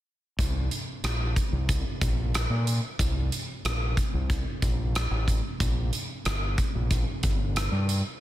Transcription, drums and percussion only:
0.39 kick, closed hi-hat
0.71 closed hi-hat
1.04 cross-stick, closed hi-hat
1.36 kick, closed hi-hat
1.69 kick, closed hi-hat
2.01 kick, closed hi-hat
2.34 cross-stick, closed hi-hat
2.67 closed hi-hat
2.99 kick, closed hi-hat
3.32 closed hi-hat
3.65 cross-stick, closed hi-hat
3.97 kick, closed hi-hat
4.30 kick, closed hi-hat
4.62 kick, closed hi-hat
4.95 cross-stick, closed hi-hat
5.28 kick, closed hi-hat
5.60 kick, closed hi-hat
5.93 closed hi-hat
6.25 cross-stick, closed hi-hat
6.58 kick, closed hi-hat
6.91 kick, closed hi-hat
7.23 kick, closed hi-hat
7.56 cross-stick, closed hi-hat
7.89 closed hi-hat

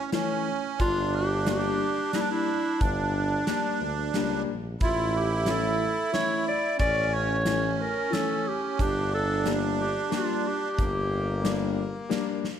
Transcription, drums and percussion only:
0.12 snare, closed hi-hat
0.80 kick, closed hi-hat
1.47 snare, closed hi-hat
2.13 snare, closed hi-hat
2.81 kick, closed hi-hat
3.47 snare, closed hi-hat
4.14 snare, closed hi-hat
4.80 kick, closed hi-hat
5.46 snare, closed hi-hat
6.14 snare, closed hi-hat
6.79 kick, closed hi-hat
7.46 snare, closed hi-hat
8.13 snare, closed hi-hat
8.79 kick, closed hi-hat
9.46 snare, closed hi-hat
10.12 snare, closed hi-hat
10.79 kick, closed hi-hat
11.45 snare, closed hi-hat
12.11 snare, closed hi-hat
12.44 snare

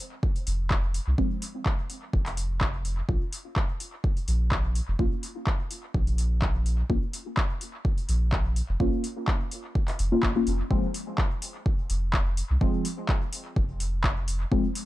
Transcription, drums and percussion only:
0.23 kick
0.36 open hi-hat
0.47 open hi-hat
0.71 kick, clap
0.94 open hi-hat
1.18 kick
1.42 open hi-hat
1.66 kick, clap
1.90 open hi-hat
2.13 kick
2.26 clap, open hi-hat
2.37 open hi-hat
2.61 kick, clap
2.85 open hi-hat
3.09 kick
3.33 open hi-hat
3.56 kick, clap
3.80 open hi-hat
4.04 kick
4.17 open hi-hat
4.28 open hi-hat
4.52 kick, clap
4.75 open hi-hat
4.99 kick
5.23 open hi-hat
5.47 kick, clap
5.71 open hi-hat
5.94 kick
6.07 open hi-hat
6.18 open hi-hat
6.42 kick, clap
6.66 open hi-hat
6.90 kick
7.13 open hi-hat
7.37 kick, clap
7.61 open hi-hat
7.85 kick
7.98 open hi-hat
8.09 open hi-hat
8.32 kick, clap
8.56 open hi-hat
8.80 kick
9.04 open hi-hat
9.28 kick, clap
9.51 open hi-hat
9.75 kick
9.88 clap, open hi-hat
9.99 open hi-hat
10.23 kick, clap
10.47 open hi-hat
10.71 kick
10.94 open hi-hat
11.18 kick, clap
11.42 open hi-hat
11.66 kick
11.90 open hi-hat
12.13 kick, clap
12.37 open hi-hat
12.61 kick
12.85 open hi-hat
13.09 kick, clap
13.33 open hi-hat
13.56 kick
13.80 open hi-hat
14.04 kick, clap
14.28 open hi-hat
14.52 kick
14.75 open hi-hat

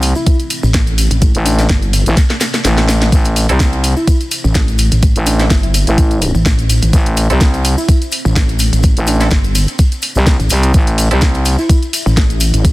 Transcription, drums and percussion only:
0.02 open hi-hat, maracas
0.15 maracas
0.26 kick, closed hi-hat, maracas
0.39 closed hi-hat, maracas
0.50 open hi-hat, maracas
0.63 maracas
0.74 kick, snare, closed hi-hat, maracas
0.87 closed hi-hat, maracas
0.98 open hi-hat, maracas
1.10 closed hi-hat, maracas
1.22 kick, closed hi-hat, maracas
1.34 closed hi-hat, maracas
1.46 open hi-hat, maracas
1.59 snare, closed hi-hat, maracas
1.69 kick, snare, closed hi-hat, maracas
1.82 closed hi-hat, maracas
1.93 open hi-hat, maracas
2.06 closed hi-hat, maracas
2.17 kick, snare, closed hi-hat, maracas
2.30 snare, closed hi-hat, maracas
2.41 snare, open hi-hat, maracas
2.54 snare, closed hi-hat, maracas
2.65 snare, closed hi-hat, maracas
2.78 snare, closed hi-hat, maracas
2.89 snare, open hi-hat, maracas
3.02 snare, closed hi-hat, maracas
3.12 kick, closed hi-hat, maracas
3.24 closed hi-hat, maracas
3.36 open hi-hat, maracas
3.49 closed hi-hat, maracas
3.60 kick, snare, closed hi-hat, maracas
3.73 closed hi-hat, maracas
3.84 open hi-hat, maracas
3.97 maracas
4.08 kick, closed hi-hat, maracas
4.21 closed hi-hat, maracas
4.31 open hi-hat, maracas
4.44 maracas
4.54 kick, snare, closed hi-hat, maracas
4.68 closed hi-hat, maracas
4.78 open hi-hat, maracas
4.92 closed hi-hat, maracas
5.03 kick, closed hi-hat, maracas
5.16 closed hi-hat, maracas
5.26 open hi-hat, maracas
5.39 snare, closed hi-hat, maracas
5.50 kick, snare, closed hi-hat, maracas
5.63 closed hi-hat, maracas
5.74 open hi-hat, maracas
5.87 closed hi-hat, maracas
5.98 kick, closed hi-hat, maracas
6.11 closed hi-hat, maracas
6.22 open hi-hat, maracas
6.35 maracas
6.46 kick, snare, closed hi-hat, maracas
6.59 closed hi-hat, maracas
6.69 open hi-hat, maracas
6.82 closed hi-hat, maracas
6.93 kick, closed hi-hat, maracas
7.06 closed hi-hat, maracas
7.17 open hi-hat, maracas
7.30 closed hi-hat, maracas
7.41 kick, snare, closed hi-hat, maracas
7.54 closed hi-hat, maracas
7.65 open hi-hat, maracas
7.78 maracas
7.89 kick, closed hi-hat, maracas
8.02 closed hi-hat, maracas
8.12 open hi-hat, maracas
8.25 maracas
8.36 kick, snare, closed hi-hat, maracas
8.49 closed hi-hat, maracas
8.59 open hi-hat, maracas
8.73 closed hi-hat, maracas
8.83 kick, closed hi-hat, maracas
8.97 closed hi-hat, maracas
9.07 open hi-hat, maracas
9.20 snare, closed hi-hat, maracas
9.30 kick, snare, closed hi-hat, maracas
9.44 closed hi-hat, maracas
9.55 open hi-hat, maracas
9.67 closed hi-hat, maracas
9.79 kick, closed hi-hat, maracas
9.92 closed hi-hat, maracas
10.02 open hi-hat, maracas
10.15 maracas
10.26 kick, snare, closed hi-hat, maracas
10.40 closed hi-hat, maracas
10.50 open hi-hat, maracas
10.63 closed hi-hat, maracas
10.74 kick, closed hi-hat, maracas
10.87 closed hi-hat, maracas
10.98 open hi-hat, maracas
11.11 closed hi-hat, maracas
11.21 kick, snare, closed hi-hat, maracas
11.34 closed hi-hat, maracas
11.45 open hi-hat, maracas
11.58 maracas
11.69 kick, closed hi-hat, maracas
11.82 closed hi-hat, maracas
11.93 open hi-hat, maracas
12.07 maracas
12.17 kick, snare, closed hi-hat, maracas
12.30 closed hi-hat, maracas
12.40 open hi-hat, maracas
12.54 closed hi-hat, maracas
12.65 kick, closed hi-hat, maracas

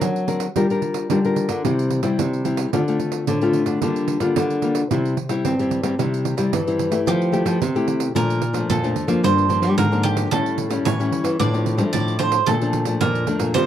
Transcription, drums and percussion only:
0.01 pandeiro
0.16 pandeiro
0.28 pandeiro
0.40 pandeiro
0.56 pandeiro
0.70 pandeiro
0.82 pandeiro
0.94 pandeiro
1.10 pandeiro
1.25 pandeiro
1.36 pandeiro
1.49 pandeiro
1.65 pandeiro
1.79 pandeiro
1.90 pandeiro
2.03 pandeiro
2.19 pandeiro
2.33 pandeiro
2.45 pandeiro
2.57 pandeiro
2.73 pandeiro
2.88 pandeiro
3.00 pandeiro
3.12 pandeiro
3.27 pandeiro
3.41 pandeiro
3.53 pandeiro
3.66 pandeiro
3.82 pandeiro
3.96 pandeiro
4.08 pandeiro
4.20 pandeiro
4.36 pandeiro
4.50 pandeiro
4.62 pandeiro
4.75 pandeiro
4.91 pandeiro
5.05 pandeiro
5.17 pandeiro
5.29 pandeiro
5.45 pandeiro
5.59 pandeiro
5.71 pandeiro
5.83 pandeiro
5.99 pandeiro
6.14 pandeiro
6.25 pandeiro
6.38 pandeiro
6.53 pandeiro
6.67 pandeiro
6.79 pandeiro
6.92 pandeiro
7.07 pandeiro
7.22 pandeiro
7.33 pandeiro
7.46 pandeiro
7.62 pandeiro
7.76 pandeiro
7.88 pandeiro
8.00 pandeiro
8.16 pandeiro
8.30 pandeiro
8.42 pandeiro
8.54 pandeiro
8.70 pandeiro
8.84 pandeiro
8.96 pandeiro
9.08 pandeiro
9.24 pandeiro
9.38 pandeiro
9.50 pandeiro
9.63 pandeiro
9.78 pandeiro
9.93 pandeiro
10.04 pandeiro
10.17 pandeiro
10.32 pandeiro
10.46 pandeiro
10.58 pandeiro
10.71 pandeiro
10.86 pandeiro
11.01 pandeiro
11.12 pandeiro
11.24 pandeiro
11.40 pandeiro
11.54 pandeiro
11.66 pandeiro
11.79 pandeiro
11.94 pandeiro
12.08 pandeiro
12.20 pandeiro
12.32 pandeiro
12.47 pandeiro
12.62 pandeiro
12.73 pandeiro
12.85 pandeiro
13.01 pandeiro
13.15 pandeiro
13.27 pandeiro
13.40 pandeiro
13.55 pandeiro

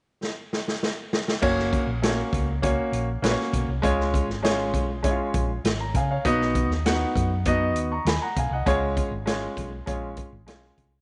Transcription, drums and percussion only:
0.23 snare
0.53 snare
0.68 snare
0.83 snare
1.13 snare
1.28 snare
1.42 kick, crash
1.59 snare
1.73 kick, closed hi-hat
2.03 snare, closed hi-hat
2.33 kick, closed hi-hat
2.63 kick, closed hi-hat
2.93 closed hi-hat
3.24 snare, closed hi-hat
3.40 snare
3.54 kick, closed hi-hat
3.83 kick, closed hi-hat
4.00 snare
4.14 kick, closed hi-hat
4.30 snare
4.44 snare, closed hi-hat
4.74 kick, closed hi-hat
5.04 kick, closed hi-hat
5.34 kick, closed hi-hat
5.65 snare, closed hi-hat
5.95 kick, closed hi-hat
6.25 kick, closed hi-hat
6.41 snare
6.55 kick, closed hi-hat
6.71 snare
6.86 snare, closed hi-hat
7.16 kick, closed hi-hat
7.45 kick, closed hi-hat
7.76 closed hi-hat
8.06 snare, closed hi-hat
8.36 kick, closed hi-hat
8.67 kick, closed hi-hat
8.97 kick, closed hi-hat
9.27 snare, closed hi-hat
9.57 kick, closed hi-hat
9.87 kick, closed hi-hat
10.17 kick, closed hi-hat
10.48 snare, closed hi-hat
10.64 snare
10.78 kick, closed hi-hat

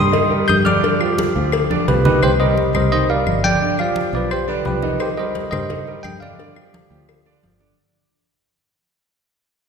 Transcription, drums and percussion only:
0.13 cowbell, high conga
0.32 high conga
0.48 cowbell, high conga, claves
0.66 high conga
0.84 cowbell, high conga
1.01 high conga, claves
1.18 cowbell, high conga
1.36 high conga
1.52 cowbell, high conga, claves
1.71 high conga
1.88 cowbell, low conga
2.05 low conga
2.22 high conga, claves
2.40 high conga
2.57 high conga
2.75 high conga, low conga, claves
2.92 high conga
3.09 high conga
3.27 high conga, claves
3.44 high conga
3.61 high conga
3.79 high conga, claves
3.96 high conga
4.13 high conga
4.30 high conga, claves
4.48 high conga
4.65 high conga
4.82 high conga
5.00 cowbell, high conga, claves
5.18 high conga
5.35 cowbell, high conga
5.52 high conga, low conga, claves
5.70 cowbell, high conga, low conga
5.87 high conga
6.04 cowbell, high conga, claves
6.22 high conga
6.40 cowbell, high conga
6.56 high conga, claves
6.74 cowbell, high conga
6.92 high conga
7.09 cowbell, high conga, claves
7.26 high conga
7.43 cowbell, high conga
7.61 high conga

